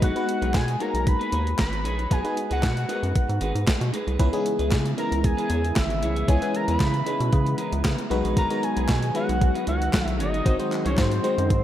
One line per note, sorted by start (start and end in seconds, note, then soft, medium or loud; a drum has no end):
0.02 0.14 B1 loud
0.02 0.26 D#4 medium
0.02 0.26 G#4 medium
0.02 0.27 B4 medium
0.02 0.57 F#5 loud
0.02 kick loud
0.02 closed hi-hat loud
0.16 0.64 G#3 medium
0.16 0.64 B3 medium
0.16 0.64 D#4 medium
0.16 0.64 F#4 medium
0.16 0.65 B4 medium
0.16 closed hi-hat medium
0.28 muted clean electric guitar stroke soft
0.28 closed hi-hat medium
0.42 0.56 B1 loud
0.42 0.53 D#4 medium
0.42 0.53 G#4 medium
0.42 0.54 B4 medium
0.42 closed hi-hat medium
0.54 0.76 B2 loud
0.54 0.83 G#5 loud
0.54 muted clean electric guitar stroke soft
0.54 kick loud
0.54 snare loud
0.54 clap medium
0.54 closed hi-hat medium
0.68 muted clean electric guitar stroke soft
0.68 closed hi-hat medium
0.80 1.58 G#3 medium
0.80 1.58 A#3 medium
0.80 1.58 B3 medium
0.80 1.01 D#4 medium
0.80 1.58 D#4 medium
0.80 1.58 F#4 medium
0.80 0.94 G#4 medium
0.80 0.93 C#5 loud
0.80 1.09 A#5 loud
0.80 closed hi-hat medium
0.94 1.16 B1 medium
0.94 muted clean electric guitar stroke medium
0.94 closed hi-hat medium
1.06 1.59 B5 loud
1.06 muted clean electric guitar stroke soft
1.06 kick loud
1.06 closed hi-hat medium
1.20 1.31 D#4 medium
1.20 1.32 G#4 medium
1.20 1.33 B4 medium
1.20 closed hi-hat soft
1.32 1.55 D#2 medium
1.32 1.49 D#4 medium
1.32 1.46 G#4 medium
1.32 1.46 C#5 medium
1.32 closed hi-hat medium
1.46 muted clean electric guitar stroke soft
1.46 closed hi-hat medium
1.59 1.86 G#1 medium
1.59 2.14 B5 loud
1.59 kick loud
1.59 snare loud
1.59 clap loud
1.59 closed hi-hat loud
1.72 muted clean electric guitar stroke soft
1.72 closed hi-hat medium
1.84 2.07 A#1 medium
1.84 1.98 D#4 medium
1.84 1.98 G#4 loud
1.84 1.97 C#5 loud
1.84 closed hi-hat medium
1.98 2.09 D#4 soft
1.98 2.10 G#4 soft
1.98 2.12 C#5 medium
1.98 closed hi-hat soft
2.10 2.23 B1 loud
2.10 2.21 G#3 medium
2.10 2.21 B3 medium
2.10 2.35 D#4 medium
2.10 2.21 D#4 medium
2.10 2.21 F#4 medium
2.10 2.35 G#4 medium
2.10 2.22 B4 medium
2.10 2.36 B4 medium
2.10 2.52 G#5 loud
2.10 kick loud
2.10 closed hi-hat loud
2.24 2.73 G#3 medium
2.24 2.73 B3 medium
2.24 2.73 D#4 medium
2.24 2.73 F#4 medium
2.24 2.73 B4 medium
2.24 closed hi-hat medium
2.37 muted clean electric guitar stroke soft
2.37 closed hi-hat medium
2.50 2.65 C#2 medium
2.50 2.61 D#4 medium
2.50 2.62 G#4 medium
2.50 2.62 B4 medium
2.50 3.52 F#5 medium
2.50 closed hi-hat medium
2.62 2.85 B2 loud
2.62 muted clean electric guitar stroke medium
2.62 kick loud
2.62 snare loud
2.62 clap medium
2.62 closed hi-hat medium
2.76 muted clean electric guitar stroke soft
2.76 closed hi-hat medium
2.88 3.67 G#3 medium
2.88 3.67 B3 medium
2.88 3.10 D#4 medium
2.88 3.67 D#4 medium
2.88 3.67 F#4 medium
2.88 3.03 G#4 medium
2.88 2.96 A#4 medium
2.88 3.01 B4 medium
2.88 closed hi-hat medium
2.96 3.70 B4 medium
3.03 3.13 F#2 medium
3.03 muted clean electric guitar stroke soft
3.03 closed hi-hat medium
3.15 muted clean electric guitar stroke soft
3.15 kick loud
3.15 closed hi-hat medium
3.29 3.40 G#2 medium
3.29 muted clean electric guitar stroke soft
3.29 closed hi-hat soft
3.41 3.53 G#1 loud
3.41 3.62 D#4 medium
3.41 3.55 G#4 medium
3.41 3.53 B4 medium
3.41 closed hi-hat medium
3.55 3.65 G#2 medium
3.55 muted clean electric guitar stroke soft
3.55 closed hi-hat medium
3.67 muted clean electric guitar stroke soft
3.67 kick loud
3.67 snare loud
3.67 clap medium
3.67 closed hi-hat loud
3.81 3.92 B2 loud
3.81 muted clean electric guitar stroke soft
3.81 closed hi-hat medium
3.93 4.07 D#4 medium
3.93 4.06 G#4 loud
3.93 4.05 B4 loud
3.93 closed hi-hat medium
4.07 4.18 C2 loud
4.07 4.19 D#4 soft
4.07 4.19 G#4 medium
4.07 4.19 B4 medium
4.07 closed hi-hat soft
4.19 4.31 C#2 loud
4.19 8.07 C#3 medium
4.19 8.07 E3 medium
4.19 4.30 G#3 loud
4.19 10.42 G#3 medium
4.19 4.30 B3 medium
4.19 10.42 B3 medium
4.19 4.30 C#4 medium
4.19 4.43 E4 medium
4.19 4.30 E4 medium
4.19 8.07 E4 medium
4.19 4.44 G#4 medium
4.19 4.30 B4 loud
4.19 4.44 B4 medium
4.19 kick loud
4.19 closed hi-hat loud
4.33 4.81 G#3 medium
4.33 4.82 B3 medium
4.33 4.82 C#4 medium
4.33 4.39 D#4 medium
4.33 4.82 G#4 loud
4.33 closed hi-hat medium
4.40 4.85 E4 medium
4.45 muted clean electric guitar stroke soft
4.45 closed hi-hat medium
4.59 4.73 C#2 medium
4.59 4.70 E4 soft
4.59 4.71 G#4 medium
4.59 4.71 B4 medium
4.59 closed hi-hat medium
4.71 4.94 C#3 loud
4.71 muted clean electric guitar stroke soft
4.71 kick loud
4.71 snare loud
4.71 clap medium
4.71 closed hi-hat medium
4.85 muted clean electric guitar stroke soft
4.85 closed hi-hat medium
4.97 5.75 G#3 medium
4.97 5.76 B3 medium
4.97 5.76 C#4 medium
4.97 5.18 E4 medium
4.97 5.76 E4 medium
4.97 5.11 G#4 medium
4.97 5.76 A#4 medium
4.97 5.11 C#5 medium
4.97 5.27 A#5 medium
4.97 closed hi-hat medium
5.11 5.34 C#2 medium
5.11 muted clean electric guitar stroke medium
5.11 closed hi-hat medium
5.24 5.79 G#5 loud
5.24 muted clean electric guitar stroke soft
5.24 kick loud
5.24 closed hi-hat medium
5.37 5.48 E4 medium
5.37 5.49 G#4 medium
5.37 5.51 B4 medium
5.37 closed hi-hat soft
5.49 5.72 E2 medium
5.49 5.66 E4 medium
5.49 5.64 G#4 medium
5.49 5.63 C#5 medium
5.49 closed hi-hat medium
5.64 muted clean electric guitar stroke soft
5.64 closed hi-hat medium
5.76 6.04 G#1 medium
5.76 6.29 E5 medium
5.76 muted clean electric guitar stroke soft
5.76 kick loud
5.76 snare loud
5.76 clap loud
5.76 closed hi-hat loud
5.90 muted clean electric guitar stroke medium
5.90 closed hi-hat medium
6.02 6.24 C2 medium
6.02 6.16 E4 medium
6.02 6.15 G#4 medium
6.02 6.14 C#5 medium
6.02 closed hi-hat medium
6.16 6.27 E4 medium
6.16 6.28 G#4 medium
6.16 6.29 C#5 medium
6.16 closed hi-hat soft
6.28 6.40 C#2 loud
6.28 6.38 G#3 medium
6.28 6.38 B3 medium
6.28 6.38 C#4 medium
6.28 6.52 E4 medium
6.28 6.39 E4 medium
6.28 6.53 G#4 medium
6.28 6.53 B4 loud
6.28 6.39 C#5 medium
6.28 6.57 G#5 loud
6.28 kick loud
6.28 closed hi-hat loud
6.42 6.90 G#3 medium
6.42 6.90 B3 medium
6.42 6.90 C#4 medium
6.42 6.90 E4 medium
6.42 6.91 B4 medium
6.42 closed hi-hat medium
6.54 6.69 A#5 loud
6.54 muted clean electric guitar stroke soft
6.54 closed hi-hat medium
6.68 6.79 E2 medium
6.68 6.79 E4 medium
6.68 6.80 G#4 medium
6.68 6.80 B4 medium
6.68 7.60 B5 loud
6.68 closed hi-hat medium
6.80 7.02 C#3 loud
6.80 muted clean electric guitar stroke soft
6.80 kick loud
6.80 snare loud
6.80 clap medium
6.80 closed hi-hat medium
6.94 muted clean electric guitar stroke soft
6.94 closed hi-hat medium
7.06 7.84 G#3 medium
7.06 7.84 B3 medium
7.06 7.84 C#4 medium
7.06 7.13 D#4 medium
7.06 7.27 E4 medium
7.06 7.20 G#4 medium
7.06 7.84 B4 medium
7.06 7.19 B4 medium
7.06 closed hi-hat medium
7.13 7.87 E4 medium
7.20 7.31 B2 loud
7.20 muted clean electric guitar stroke soft
7.20 closed hi-hat medium
7.32 7.55 C#3 loud
7.32 muted clean electric guitar stroke soft
7.32 kick loud
7.32 closed hi-hat medium
7.46 muted clean electric guitar stroke medium
7.46 closed hi-hat soft
7.58 7.79 E4 medium
7.58 7.72 G#4 medium
7.58 7.71 B4 loud
7.58 8.08 A#5 loud
7.58 closed hi-hat medium
7.72 7.83 C#2 medium
7.72 muted clean electric guitar stroke soft
7.72 closed hi-hat medium
7.85 7.96 C#3 loud
7.85 muted clean electric guitar stroke soft
7.85 kick loud
7.85 snare loud
7.85 clap loud
7.85 closed hi-hat loud
7.98 muted clean electric guitar stroke soft
7.98 closed hi-hat medium
8.10 8.22 B1 loud
8.10 11.64 D#3 medium
8.10 11.64 F#3 medium
8.10 8.42 G#3 loud
8.10 8.42 B3 medium
8.10 8.24 D#4 medium
8.10 8.42 D#4 medium
8.10 8.43 F#4 medium
8.10 11.64 F#4 medium
8.10 8.23 G#4 medium
8.10 8.43 B4 loud
8.10 8.23 B4 loud
8.10 closed hi-hat medium
8.24 8.35 A#1 medium
8.24 8.35 D#4 medium
8.24 8.36 G#4 medium
8.24 8.37 B4 medium
8.24 closed hi-hat soft
8.36 8.49 B1 loud
8.36 8.61 D#4 medium
8.36 8.61 G#4 medium
8.36 8.61 B4 medium
8.36 8.65 A#5 loud
8.36 kick loud
8.36 closed hi-hat loud
8.50 8.99 G#3 medium
8.50 8.99 B3 medium
8.50 8.99 D#4 medium
8.50 8.99 F#4 medium
8.50 8.99 B4 medium
8.50 closed hi-hat medium
8.62 9.15 G#5 loud
8.62 muted clean electric guitar stroke soft
8.62 closed hi-hat medium
8.76 8.87 B1 medium
8.76 8.87 D#4 medium
8.76 8.88 G#4 medium
8.76 8.89 B4 medium
8.76 closed hi-hat medium
8.89 9.11 B2 loud
8.89 muted clean electric guitar stroke soft
8.89 kick loud
8.89 snare loud
8.89 clap medium
8.89 closed hi-hat medium
9.02 muted clean electric guitar stroke medium
9.02 closed hi-hat medium
9.14 9.93 G#3 medium
9.14 9.93 B3 medium
9.14 9.36 D#4 medium
9.14 9.93 D#4 medium
9.14 9.93 F#4 medium
9.14 9.29 G#4 medium
9.14 9.93 B4 medium
9.14 9.28 C#5 medium
9.14 9.64 F#5 loud
9.14 closed hi-hat medium
9.28 9.51 B1 medium
9.28 muted clean electric guitar stroke medium
9.28 closed hi-hat medium
9.41 muted clean electric guitar stroke soft
9.41 kick loud
9.41 closed hi-hat medium
9.54 9.65 D#4 medium
9.54 9.66 G#4 medium
9.54 9.68 B4 medium
9.54 closed hi-hat soft
9.67 9.90 C#2 loud
9.67 9.84 D#4 medium
9.67 9.81 G#4 medium
9.67 9.80 C#5 medium
9.67 10.16 F#5 loud
9.67 closed hi-hat medium
9.81 muted clean electric guitar stroke soft
9.81 closed hi-hat medium
9.93 10.21 B1 loud
9.93 muted clean electric guitar stroke soft
9.93 kick loud
9.93 snare loud
9.93 clap loud
9.93 closed hi-hat loud
10.07 muted clean electric guitar stroke soft
10.07 closed hi-hat medium
10.19 10.42 G1 medium
10.19 10.33 D#4 medium
10.19 10.32 G#4 medium
10.19 10.31 C#5 loud
10.19 10.82 D#5 loud
10.19 closed hi-hat medium
10.33 10.43 D#4 medium
10.33 10.45 G#4 medium
10.33 10.46 C#5 medium
10.33 closed hi-hat soft
10.45 10.57 G#1 loud
10.45 10.56 G#3 medium
10.45 11.64 G#3 medium
10.45 10.56 C4 medium
10.45 11.64 C4 medium
10.45 10.69 D#4 loud
10.45 10.56 D#4 medium
10.45 10.70 F#4 medium
10.45 10.56 F#4 medium
10.45 10.56 C5 medium
10.45 10.70 C5 loud
10.45 kick loud
10.45 closed hi-hat loud
10.59 11.08 G#3 medium
10.59 11.08 C4 medium
10.59 11.08 D#4 medium
10.59 11.08 F#4 medium
10.59 11.08 C5 medium
10.59 closed hi-hat medium
10.71 muted clean electric guitar stroke soft
10.71 clap medium
10.71 closed hi-hat medium
10.85 10.96 C2 medium
10.85 10.96 D#4 medium
10.85 10.97 F#4 medium
10.85 10.97 C5 medium
10.85 11.00 C#5 medium
10.85 closed hi-hat medium
10.97 11.20 G#2 loud
10.97 11.64 C5 medium
10.97 muted clean electric guitar stroke soft
10.97 kick loud
10.97 snare loud
10.97 clap medium
10.97 closed hi-hat loud
11.11 muted clean electric guitar stroke soft
11.11 closed hi-hat medium
11.23 11.64 G#3 medium
11.23 11.64 C4 medium
11.23 11.44 D#4 medium
11.23 11.64 D#4 medium
11.23 11.64 F#4 medium
11.23 11.37 F#4 loud
11.23 11.64 C5 medium
11.23 11.36 C5 loud
11.23 closed hi-hat medium
11.37 11.52 F#2 medium
11.37 muted clean electric guitar stroke medium
11.37 closed hi-hat medium
11.49 11.64 G#2 loud
11.49 muted clean electric guitar stroke soft
11.49 kick loud
11.49 closed hi-hat medium